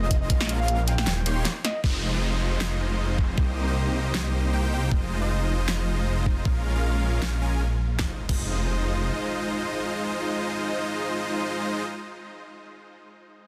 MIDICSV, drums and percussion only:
0, 0, Header, 1, 2, 480
1, 0, Start_track
1, 0, Key_signature, -4, "minor"
1, 0, Tempo, 384615
1, 374, Time_signature, 4, 2, 24, 8
1, 16812, End_track
2, 0, Start_track
2, 0, Title_t, "Drums"
2, 133, Note_on_c, 9, 36, 62
2, 134, Note_on_c, 9, 42, 67
2, 258, Note_off_c, 9, 36, 0
2, 259, Note_off_c, 9, 42, 0
2, 373, Note_on_c, 9, 36, 113
2, 374, Note_on_c, 9, 42, 80
2, 498, Note_off_c, 9, 36, 0
2, 498, Note_off_c, 9, 42, 0
2, 506, Note_on_c, 9, 40, 89
2, 614, Note_on_c, 9, 42, 67
2, 631, Note_off_c, 9, 40, 0
2, 739, Note_off_c, 9, 42, 0
2, 853, Note_on_c, 9, 42, 78
2, 977, Note_off_c, 9, 42, 0
2, 1093, Note_on_c, 9, 42, 68
2, 1218, Note_off_c, 9, 42, 0
2, 1227, Note_on_c, 9, 40, 83
2, 1333, Note_on_c, 9, 38, 119
2, 1333, Note_on_c, 9, 42, 81
2, 1351, Note_off_c, 9, 40, 0
2, 1458, Note_off_c, 9, 38, 0
2, 1458, Note_off_c, 9, 42, 0
2, 1572, Note_on_c, 9, 42, 72
2, 1697, Note_off_c, 9, 42, 0
2, 1813, Note_on_c, 9, 38, 59
2, 1813, Note_on_c, 9, 42, 79
2, 1938, Note_off_c, 9, 38, 0
2, 1938, Note_off_c, 9, 42, 0
2, 2054, Note_on_c, 9, 40, 63
2, 2054, Note_on_c, 9, 42, 70
2, 2179, Note_off_c, 9, 40, 0
2, 2179, Note_off_c, 9, 42, 0
2, 2294, Note_on_c, 9, 36, 102
2, 2419, Note_off_c, 9, 36, 0
2, 3254, Note_on_c, 9, 38, 104
2, 3379, Note_off_c, 9, 38, 0
2, 3974, Note_on_c, 9, 36, 61
2, 4099, Note_off_c, 9, 36, 0
2, 4214, Note_on_c, 9, 36, 116
2, 4339, Note_off_c, 9, 36, 0
2, 5173, Note_on_c, 9, 38, 103
2, 5298, Note_off_c, 9, 38, 0
2, 6134, Note_on_c, 9, 36, 106
2, 6259, Note_off_c, 9, 36, 0
2, 7094, Note_on_c, 9, 38, 101
2, 7219, Note_off_c, 9, 38, 0
2, 7815, Note_on_c, 9, 36, 61
2, 7939, Note_off_c, 9, 36, 0
2, 8055, Note_on_c, 9, 36, 103
2, 8179, Note_off_c, 9, 36, 0
2, 9015, Note_on_c, 9, 38, 104
2, 9139, Note_off_c, 9, 38, 0
2, 9974, Note_on_c, 9, 38, 76
2, 9975, Note_on_c, 9, 36, 101
2, 10099, Note_off_c, 9, 36, 0
2, 10099, Note_off_c, 9, 38, 0
2, 10348, Note_on_c, 9, 36, 98
2, 10348, Note_on_c, 9, 49, 75
2, 10473, Note_off_c, 9, 36, 0
2, 10473, Note_off_c, 9, 49, 0
2, 16812, End_track
0, 0, End_of_file